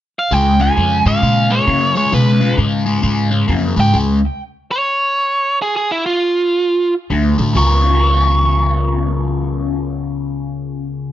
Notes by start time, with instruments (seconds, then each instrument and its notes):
0.19 lead electric guitar F5
0.31 upright bass C#2, overdriven electric guitar C#3 G#3, lead electric guitar G5
0.59 overdriven electric guitar C#3 G#3, lead electric guitar G#5
0.77 upright bass F2, overdriven electric guitar C#3 G#3
1.06 upright bass G#2, overdriven electric guitar C#3 G#3, lead electric guitar F5
1.22 upright bass A#2, overdriven electric guitar C#3 G#3
1.50 overdriven electric guitar C#3 G#3, lead electric guitar C#5
1.67 overdriven electric guitar C#3 A#3, upright bass C#3
1.95 overdriven electric guitar C#3 G#3, lead electric guitar C#5
2.12 upright bass B2, overdriven electric guitar C#3 G#3, lead electric guitar B4
2.41 overdriven electric guitar C#3 G#3
2.57 upright bass G#2, overdriven electric guitar C#3 G#3
2.86 overdriven electric guitar C#3 G#3
3.02 upright bass G#2, overdriven electric guitar C#3 G#3
3.31 overdriven electric guitar C#3 G#3
3.48 upright bass F2, overdriven electric guitar C#3 A#3
3.76 upright bass G#2, overdriven electric guitar C#3 G#3, lead electric guitar G5
3.93 upright bass C#2, overdriven electric guitar C#3 G#3
4.71 lead electric guitar C#5
5.62 lead electric guitar G#4
5.76 lead electric guitar G#4
5.92 lead electric guitar E4
6.06 lead electric guitar F4
7.10 upright bass D2, overdriven electric guitar D3 A3
7.38 upright bass A2, overdriven electric guitar D3 A3
7.54 upright bass C#2, overdriven electric guitar C#3 B3 F4, lead electric guitar C#6
7.58 overdriven electric guitar A#4